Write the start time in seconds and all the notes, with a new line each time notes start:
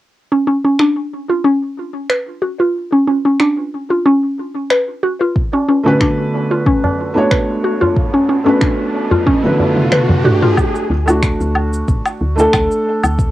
0.32 C#4
0.47 C#4
0.64 C#4
0.79 D4, finger snap
1.29 F4
1.44 C#4
2.10 B4, finger snap
2.42 F#4
2.60 F4
2.92 C#4
3.07 C#4
3.25 C#4
3.40 D4, finger snap
3.90 F4
4.06 C#4
4.70 B4, finger snap
5.03 F#4
5.21 F4
5.36 kick, riser
5.53 C#4, tabla na
5.69 C#4
5.84 D3 A3 B3 C#4 F#4
5.88 B4
6.01 D4, finger snap, kick
6.34 tabla na
6.51 F4, tabla tin
6.66 C#4, kick
6.84 tabla na, tabla ge
6.99 tabla tin
7.14 A3 B3 D4 F#4 C#5
7.31 B4, finger snap, kick
7.64 F#4
7.81 F4, tabla tin, tabla ge
7.96 kick
8.14 C#4
8.29 C#4
8.44 A3 B3 C#4 D4 F#4, tabla na
8.48 B4
8.61 D4, finger snap, kick
8.94 tabla na
9.11 F4, tabla tin, tabla ge
9.26 C#4, kick, high tom
9.42 D3 A3 B3 F#4 B4, high tom
9.59 tabla tin, tabla ge
9.77 mid tom
9.92 B4, finger snap, mid tom
10.09 mid tom, tabla tin, tabla ge
10.24 A3 D4 F#4, mid tom, tabla tin
10.42 F4, mid tom
10.57 kick, low woodblock, shaker
10.75 shaker
10.90 D2
11.06 A3 D4 F#4, low woodblock, shaker
11.23 finger snap, kick, shaker
11.40 D2, shaker
11.55 low woodblock
11.73 shaker
11.88 A1, kick, shaker
12.05 finger snap, low woodblock, shaker
12.21 D2
12.36 A3 D4 A4, shaker
12.53 D2, finger snap, kick, low woodblock, shaker
12.71 shaker
13.03 D2, low woodblock, shaker
13.19 kick, shaker